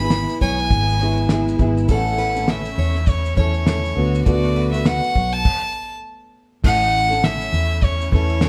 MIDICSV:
0, 0, Header, 1, 7, 480
1, 0, Start_track
1, 0, Key_signature, 3, "major"
1, 0, Tempo, 592885
1, 1533, Time_signature, 4, 2, 24, 8
1, 6873, End_track
2, 0, Start_track
2, 0, Title_t, "Violin"
2, 0, Program_c, 0, 40
2, 0, Note_on_c, 0, 83, 102
2, 302, Note_off_c, 0, 83, 0
2, 337, Note_on_c, 0, 80, 97
2, 1262, Note_off_c, 0, 80, 0
2, 1546, Note_on_c, 0, 78, 94
2, 2021, Note_on_c, 0, 76, 92
2, 2033, Note_off_c, 0, 78, 0
2, 2498, Note_on_c, 0, 73, 81
2, 2510, Note_off_c, 0, 76, 0
2, 2730, Note_off_c, 0, 73, 0
2, 2735, Note_on_c, 0, 73, 86
2, 3422, Note_off_c, 0, 73, 0
2, 3447, Note_on_c, 0, 74, 95
2, 3807, Note_off_c, 0, 74, 0
2, 3823, Note_on_c, 0, 76, 88
2, 3935, Note_on_c, 0, 78, 100
2, 3947, Note_off_c, 0, 76, 0
2, 4314, Note_on_c, 0, 81, 102
2, 4326, Note_off_c, 0, 78, 0
2, 4796, Note_off_c, 0, 81, 0
2, 5388, Note_on_c, 0, 78, 114
2, 5862, Note_on_c, 0, 76, 108
2, 5874, Note_off_c, 0, 78, 0
2, 6346, Note_on_c, 0, 73, 96
2, 6359, Note_off_c, 0, 76, 0
2, 6580, Note_off_c, 0, 73, 0
2, 6586, Note_on_c, 0, 73, 90
2, 6873, Note_off_c, 0, 73, 0
2, 6873, End_track
3, 0, Start_track
3, 0, Title_t, "Steel-string acoustic guitar"
3, 0, Program_c, 1, 25
3, 0, Note_on_c, 1, 71, 79
3, 215, Note_off_c, 1, 71, 0
3, 335, Note_on_c, 1, 73, 74
3, 471, Note_off_c, 1, 73, 0
3, 807, Note_on_c, 1, 73, 73
3, 946, Note_off_c, 1, 73, 0
3, 1527, Note_on_c, 1, 69, 103
3, 1757, Note_off_c, 1, 69, 0
3, 1768, Note_on_c, 1, 71, 78
3, 2131, Note_off_c, 1, 71, 0
3, 2254, Note_on_c, 1, 73, 78
3, 2390, Note_off_c, 1, 73, 0
3, 2732, Note_on_c, 1, 73, 72
3, 2869, Note_off_c, 1, 73, 0
3, 3451, Note_on_c, 1, 69, 96
3, 3680, Note_off_c, 1, 69, 0
3, 3693, Note_on_c, 1, 71, 82
3, 4054, Note_off_c, 1, 71, 0
3, 4171, Note_on_c, 1, 73, 75
3, 4309, Note_off_c, 1, 73, 0
3, 6873, End_track
4, 0, Start_track
4, 0, Title_t, "Nylon-string guitar"
4, 0, Program_c, 2, 24
4, 0, Note_on_c, 2, 68, 46
4, 8, Note_on_c, 2, 64, 48
4, 23, Note_on_c, 2, 59, 38
4, 810, Note_off_c, 2, 68, 0
4, 811, Note_on_c, 2, 56, 56
4, 812, Note_off_c, 2, 59, 0
4, 822, Note_on_c, 2, 59, 68
4, 827, Note_off_c, 2, 64, 0
4, 830, Note_on_c, 2, 64, 67
4, 835, Note_on_c, 2, 68, 64
4, 1035, Note_off_c, 2, 56, 0
4, 1045, Note_on_c, 2, 56, 64
4, 1049, Note_off_c, 2, 59, 0
4, 1058, Note_on_c, 2, 59, 68
4, 1059, Note_off_c, 2, 64, 0
4, 1064, Note_off_c, 2, 68, 0
4, 1069, Note_on_c, 2, 64, 69
4, 1074, Note_on_c, 2, 68, 62
4, 1273, Note_off_c, 2, 56, 0
4, 1283, Note_on_c, 2, 56, 61
4, 1286, Note_off_c, 2, 59, 0
4, 1294, Note_off_c, 2, 64, 0
4, 1296, Note_on_c, 2, 59, 64
4, 1301, Note_off_c, 2, 68, 0
4, 1304, Note_on_c, 2, 64, 68
4, 1310, Note_on_c, 2, 68, 74
4, 1528, Note_off_c, 2, 56, 0
4, 1530, Note_on_c, 2, 45, 75
4, 1534, Note_off_c, 2, 59, 0
4, 1537, Note_on_c, 2, 52, 77
4, 1538, Note_off_c, 2, 64, 0
4, 1539, Note_on_c, 2, 57, 82
4, 1542, Note_off_c, 2, 68, 0
4, 1546, Note_on_c, 2, 61, 71
4, 1549, Note_on_c, 2, 69, 83
4, 1898, Note_off_c, 2, 69, 0
4, 1908, Note_on_c, 2, 69, 52
4, 1910, Note_off_c, 2, 61, 0
4, 1915, Note_off_c, 2, 45, 0
4, 1919, Note_off_c, 2, 52, 0
4, 1920, Note_off_c, 2, 57, 0
4, 1920, Note_on_c, 2, 61, 47
4, 1934, Note_on_c, 2, 57, 44
4, 2723, Note_on_c, 2, 52, 54
4, 2729, Note_off_c, 2, 61, 0
4, 2732, Note_off_c, 2, 57, 0
4, 2735, Note_on_c, 2, 57, 60
4, 2738, Note_on_c, 2, 61, 63
4, 2745, Note_off_c, 2, 69, 0
4, 2748, Note_on_c, 2, 69, 66
4, 2952, Note_off_c, 2, 52, 0
4, 2961, Note_off_c, 2, 57, 0
4, 2962, Note_on_c, 2, 52, 57
4, 2971, Note_on_c, 2, 57, 62
4, 2972, Note_off_c, 2, 61, 0
4, 2981, Note_off_c, 2, 69, 0
4, 2982, Note_on_c, 2, 61, 56
4, 2991, Note_on_c, 2, 69, 58
4, 3196, Note_off_c, 2, 52, 0
4, 3199, Note_off_c, 2, 57, 0
4, 3200, Note_on_c, 2, 50, 63
4, 3209, Note_on_c, 2, 57, 54
4, 3213, Note_off_c, 2, 61, 0
4, 3216, Note_on_c, 2, 59, 65
4, 3221, Note_off_c, 2, 69, 0
4, 3224, Note_on_c, 2, 66, 71
4, 3436, Note_off_c, 2, 50, 0
4, 3443, Note_off_c, 2, 57, 0
4, 3446, Note_on_c, 2, 50, 70
4, 3453, Note_on_c, 2, 57, 80
4, 3454, Note_off_c, 2, 59, 0
4, 3455, Note_off_c, 2, 66, 0
4, 3463, Note_on_c, 2, 59, 77
4, 3465, Note_on_c, 2, 66, 80
4, 3817, Note_off_c, 2, 66, 0
4, 3827, Note_on_c, 2, 66, 46
4, 3830, Note_off_c, 2, 59, 0
4, 3833, Note_off_c, 2, 50, 0
4, 3837, Note_off_c, 2, 57, 0
4, 3840, Note_on_c, 2, 59, 45
4, 3853, Note_on_c, 2, 57, 46
4, 4408, Note_off_c, 2, 66, 0
4, 4415, Note_off_c, 2, 59, 0
4, 4826, Note_off_c, 2, 57, 0
4, 5372, Note_on_c, 2, 45, 77
4, 5378, Note_on_c, 2, 52, 74
4, 5383, Note_on_c, 2, 57, 80
4, 5388, Note_on_c, 2, 61, 72
4, 5390, Note_on_c, 2, 69, 70
4, 5744, Note_off_c, 2, 69, 0
4, 5754, Note_on_c, 2, 69, 54
4, 5757, Note_off_c, 2, 45, 0
4, 5759, Note_off_c, 2, 61, 0
4, 5760, Note_off_c, 2, 52, 0
4, 5762, Note_off_c, 2, 57, 0
4, 5769, Note_on_c, 2, 61, 46
4, 5780, Note_on_c, 2, 57, 43
4, 6572, Note_off_c, 2, 69, 0
4, 6572, Note_on_c, 2, 52, 63
4, 6573, Note_off_c, 2, 57, 0
4, 6580, Note_off_c, 2, 61, 0
4, 6583, Note_on_c, 2, 57, 57
4, 6591, Note_on_c, 2, 61, 65
4, 6596, Note_on_c, 2, 69, 65
4, 6806, Note_off_c, 2, 52, 0
4, 6816, Note_on_c, 2, 52, 53
4, 6819, Note_off_c, 2, 57, 0
4, 6823, Note_off_c, 2, 61, 0
4, 6825, Note_off_c, 2, 69, 0
4, 6828, Note_on_c, 2, 57, 55
4, 6833, Note_on_c, 2, 61, 62
4, 6842, Note_on_c, 2, 69, 63
4, 6873, Note_off_c, 2, 52, 0
4, 6873, Note_off_c, 2, 57, 0
4, 6873, Note_off_c, 2, 61, 0
4, 6873, Note_off_c, 2, 69, 0
4, 6873, End_track
5, 0, Start_track
5, 0, Title_t, "String section"
5, 0, Program_c, 3, 48
5, 0, Note_on_c, 3, 56, 73
5, 0, Note_on_c, 3, 59, 63
5, 0, Note_on_c, 3, 64, 76
5, 1515, Note_off_c, 3, 56, 0
5, 1516, Note_off_c, 3, 59, 0
5, 1530, Note_on_c, 3, 61, 69
5, 1536, Note_on_c, 3, 57, 78
5, 3185, Note_off_c, 3, 64, 0
5, 3194, Note_off_c, 3, 61, 0
5, 3198, Note_off_c, 3, 57, 0
5, 3227, Note_on_c, 3, 50, 78
5, 3227, Note_on_c, 3, 59, 68
5, 3228, Note_on_c, 3, 66, 85
5, 3230, Note_on_c, 3, 57, 66
5, 4409, Note_off_c, 3, 50, 0
5, 4409, Note_off_c, 3, 59, 0
5, 4409, Note_off_c, 3, 66, 0
5, 4410, Note_off_c, 3, 57, 0
5, 5386, Note_on_c, 3, 64, 76
5, 5387, Note_on_c, 3, 57, 75
5, 5388, Note_on_c, 3, 61, 69
5, 6873, Note_off_c, 3, 57, 0
5, 6873, Note_off_c, 3, 61, 0
5, 6873, Note_off_c, 3, 64, 0
5, 6873, End_track
6, 0, Start_track
6, 0, Title_t, "Fingered electric bass"
6, 0, Program_c, 4, 33
6, 0, Note_on_c, 4, 32, 97
6, 204, Note_off_c, 4, 32, 0
6, 334, Note_on_c, 4, 35, 86
6, 554, Note_off_c, 4, 35, 0
6, 570, Note_on_c, 4, 32, 108
6, 1259, Note_off_c, 4, 32, 0
6, 1288, Note_on_c, 4, 32, 78
6, 1511, Note_off_c, 4, 32, 0
6, 1527, Note_on_c, 4, 33, 96
6, 2218, Note_off_c, 4, 33, 0
6, 2249, Note_on_c, 4, 40, 100
6, 2698, Note_off_c, 4, 40, 0
6, 2728, Note_on_c, 4, 40, 77
6, 3178, Note_off_c, 4, 40, 0
6, 3213, Note_on_c, 4, 38, 93
6, 3434, Note_off_c, 4, 38, 0
6, 3448, Note_on_c, 4, 38, 100
6, 4044, Note_off_c, 4, 38, 0
6, 4173, Note_on_c, 4, 35, 84
6, 4394, Note_off_c, 4, 35, 0
6, 5375, Note_on_c, 4, 33, 112
6, 6062, Note_off_c, 4, 33, 0
6, 6094, Note_on_c, 4, 40, 89
6, 6542, Note_off_c, 4, 40, 0
6, 6575, Note_on_c, 4, 40, 97
6, 6873, Note_off_c, 4, 40, 0
6, 6873, End_track
7, 0, Start_track
7, 0, Title_t, "Drums"
7, 85, Note_on_c, 9, 38, 108
7, 86, Note_on_c, 9, 82, 68
7, 166, Note_off_c, 9, 38, 0
7, 167, Note_off_c, 9, 82, 0
7, 233, Note_on_c, 9, 82, 52
7, 314, Note_off_c, 9, 82, 0
7, 335, Note_on_c, 9, 36, 88
7, 416, Note_off_c, 9, 36, 0
7, 479, Note_on_c, 9, 82, 47
7, 560, Note_off_c, 9, 82, 0
7, 568, Note_on_c, 9, 82, 69
7, 570, Note_on_c, 9, 36, 94
7, 649, Note_off_c, 9, 82, 0
7, 651, Note_off_c, 9, 36, 0
7, 726, Note_on_c, 9, 82, 50
7, 807, Note_off_c, 9, 82, 0
7, 816, Note_on_c, 9, 82, 42
7, 897, Note_off_c, 9, 82, 0
7, 949, Note_on_c, 9, 82, 52
7, 1030, Note_off_c, 9, 82, 0
7, 1045, Note_on_c, 9, 38, 115
7, 1049, Note_on_c, 9, 82, 77
7, 1126, Note_off_c, 9, 38, 0
7, 1130, Note_off_c, 9, 82, 0
7, 1200, Note_on_c, 9, 82, 52
7, 1281, Note_off_c, 9, 82, 0
7, 1285, Note_on_c, 9, 82, 62
7, 1290, Note_on_c, 9, 36, 95
7, 1366, Note_off_c, 9, 82, 0
7, 1371, Note_off_c, 9, 36, 0
7, 1436, Note_on_c, 9, 82, 56
7, 1517, Note_off_c, 9, 82, 0
7, 1526, Note_on_c, 9, 82, 73
7, 1529, Note_on_c, 9, 36, 99
7, 1607, Note_off_c, 9, 82, 0
7, 1610, Note_off_c, 9, 36, 0
7, 1672, Note_on_c, 9, 82, 47
7, 1753, Note_off_c, 9, 82, 0
7, 1766, Note_on_c, 9, 82, 44
7, 1847, Note_off_c, 9, 82, 0
7, 1911, Note_on_c, 9, 82, 61
7, 1992, Note_off_c, 9, 82, 0
7, 2006, Note_on_c, 9, 38, 109
7, 2008, Note_on_c, 9, 82, 72
7, 2087, Note_off_c, 9, 38, 0
7, 2089, Note_off_c, 9, 82, 0
7, 2147, Note_on_c, 9, 82, 54
7, 2228, Note_off_c, 9, 82, 0
7, 2390, Note_on_c, 9, 38, 35
7, 2393, Note_on_c, 9, 82, 52
7, 2470, Note_off_c, 9, 38, 0
7, 2474, Note_off_c, 9, 82, 0
7, 2485, Note_on_c, 9, 82, 72
7, 2486, Note_on_c, 9, 36, 91
7, 2566, Note_off_c, 9, 82, 0
7, 2567, Note_off_c, 9, 36, 0
7, 2636, Note_on_c, 9, 82, 47
7, 2717, Note_off_c, 9, 82, 0
7, 2726, Note_on_c, 9, 82, 44
7, 2729, Note_on_c, 9, 36, 80
7, 2807, Note_off_c, 9, 82, 0
7, 2810, Note_off_c, 9, 36, 0
7, 2863, Note_on_c, 9, 82, 49
7, 2944, Note_off_c, 9, 82, 0
7, 2967, Note_on_c, 9, 38, 116
7, 2972, Note_on_c, 9, 82, 68
7, 3048, Note_off_c, 9, 38, 0
7, 3053, Note_off_c, 9, 82, 0
7, 3118, Note_on_c, 9, 82, 51
7, 3199, Note_off_c, 9, 82, 0
7, 3359, Note_on_c, 9, 82, 57
7, 3440, Note_off_c, 9, 82, 0
7, 3450, Note_on_c, 9, 82, 70
7, 3452, Note_on_c, 9, 36, 105
7, 3531, Note_off_c, 9, 82, 0
7, 3533, Note_off_c, 9, 36, 0
7, 3599, Note_on_c, 9, 82, 45
7, 3680, Note_off_c, 9, 82, 0
7, 3835, Note_on_c, 9, 82, 57
7, 3916, Note_off_c, 9, 82, 0
7, 3931, Note_on_c, 9, 38, 119
7, 3932, Note_on_c, 9, 82, 70
7, 4011, Note_off_c, 9, 38, 0
7, 4013, Note_off_c, 9, 82, 0
7, 4075, Note_on_c, 9, 82, 52
7, 4156, Note_off_c, 9, 82, 0
7, 4174, Note_on_c, 9, 36, 85
7, 4255, Note_off_c, 9, 36, 0
7, 4318, Note_on_c, 9, 82, 46
7, 4399, Note_off_c, 9, 82, 0
7, 4413, Note_on_c, 9, 49, 85
7, 4414, Note_on_c, 9, 36, 107
7, 4494, Note_off_c, 9, 36, 0
7, 4494, Note_off_c, 9, 49, 0
7, 5377, Note_on_c, 9, 36, 109
7, 5377, Note_on_c, 9, 49, 103
7, 5458, Note_off_c, 9, 36, 0
7, 5458, Note_off_c, 9, 49, 0
7, 5530, Note_on_c, 9, 82, 47
7, 5611, Note_off_c, 9, 82, 0
7, 5765, Note_on_c, 9, 82, 62
7, 5846, Note_off_c, 9, 82, 0
7, 5859, Note_on_c, 9, 38, 122
7, 5861, Note_on_c, 9, 82, 70
7, 5940, Note_off_c, 9, 38, 0
7, 5942, Note_off_c, 9, 82, 0
7, 6001, Note_on_c, 9, 82, 56
7, 6082, Note_off_c, 9, 82, 0
7, 6100, Note_on_c, 9, 82, 51
7, 6181, Note_off_c, 9, 82, 0
7, 6241, Note_on_c, 9, 82, 48
7, 6322, Note_off_c, 9, 82, 0
7, 6332, Note_on_c, 9, 82, 72
7, 6333, Note_on_c, 9, 36, 93
7, 6413, Note_off_c, 9, 82, 0
7, 6414, Note_off_c, 9, 36, 0
7, 6486, Note_on_c, 9, 82, 52
7, 6567, Note_off_c, 9, 82, 0
7, 6577, Note_on_c, 9, 36, 92
7, 6577, Note_on_c, 9, 82, 44
7, 6658, Note_off_c, 9, 36, 0
7, 6658, Note_off_c, 9, 82, 0
7, 6714, Note_on_c, 9, 82, 49
7, 6795, Note_off_c, 9, 82, 0
7, 6810, Note_on_c, 9, 38, 117
7, 6814, Note_on_c, 9, 82, 73
7, 6873, Note_off_c, 9, 38, 0
7, 6873, Note_off_c, 9, 82, 0
7, 6873, End_track
0, 0, End_of_file